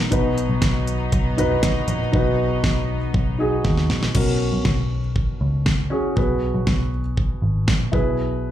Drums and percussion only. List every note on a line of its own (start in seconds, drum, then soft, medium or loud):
0.12 kick loud
0.12 closed hi-hat medium
0.38 closed hi-hat medium
0.62 kick medium
0.62 snare medium
0.62 closed hi-hat medium
0.87 closed hi-hat medium
1.12 kick medium
1.12 closed hi-hat medium
1.38 closed hi-hat medium
1.38 floor tom medium
1.63 kick medium
1.63 snare medium
1.63 closed hi-hat medium
1.88 closed hi-hat medium
1.88 floor tom soft
2.14 kick loud
2.64 kick medium
2.64 snare medium
3.14 kick loud
3.65 kick medium
3.65 snare soft
3.77 snare soft
3.90 snare medium
4.03 snare medium
4.15 kick medium
4.15 crash medium
4.65 kick medium
4.65 snare medium
5.16 kick medium
5.66 kick medium
5.66 snare medium
6.17 kick medium
6.67 kick medium
6.67 snare medium
7.17 kick medium
7.68 kick medium
7.68 snare medium
7.93 kick medium